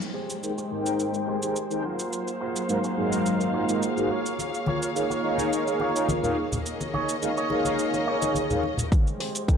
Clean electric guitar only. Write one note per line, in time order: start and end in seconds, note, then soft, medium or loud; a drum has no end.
0.14 0.36 G4 loud
0.14 0.36 G#4 medium
0.14 0.36 C5 medium
0.57 0.86 G4 medium
0.57 0.86 G#4 medium
0.57 0.86 C5 medium
1.14 muted clean electric guitar stroke medium
1.28 1.84 G4 medium
1.28 1.83 G#4 medium
1.28 1.83 C5 loud
1.84 2.30 F4 medium
1.84 2.30 F#4 medium
1.84 2.30 G#4 medium
1.84 2.30 A#4 medium
1.84 2.30 C5 medium
2.41 2.62 F4 medium
2.41 2.62 F#4 medium
2.41 2.63 G#4 medium
2.41 2.63 A#4 medium
2.41 2.63 C5 loud
2.84 3.12 F4 medium
2.84 3.12 F#4 medium
2.84 3.12 G#4 medium
2.84 3.13 A#4 medium
2.84 3.13 C5 medium
3.40 muted clean electric guitar stroke medium
3.53 4.09 F4 loud
3.53 4.10 F#4 medium
3.53 4.11 G#4 medium
3.53 4.10 A#4 loud
3.53 4.11 C5 loud
4.10 4.56 F4 medium
4.10 4.57 A#4 medium
4.10 4.57 C#5 medium
4.67 4.89 F4 loud
4.67 4.89 A#4 medium
4.67 4.89 C#5 loud
5.10 5.39 F4 medium
5.10 5.39 A#4 medium
5.10 5.39 C#5 medium
5.67 muted clean electric guitar stroke medium
5.80 6.37 F4 loud
5.80 6.37 A#4 medium
5.80 6.38 C#5 loud
6.93 7.15 D#4 loud
6.93 7.15 G#4 medium
6.93 7.16 C#5 loud
7.37 7.65 D#4 medium
7.37 7.65 G#4 medium
7.37 7.66 C#5 medium
7.93 muted clean electric guitar stroke medium
8.07 8.64 D#4 loud
8.07 8.64 G#4 medium
8.07 8.64 C#5 loud
9.20 9.42 G4 loud
9.20 9.42 G#4 medium
9.20 9.42 C5 loud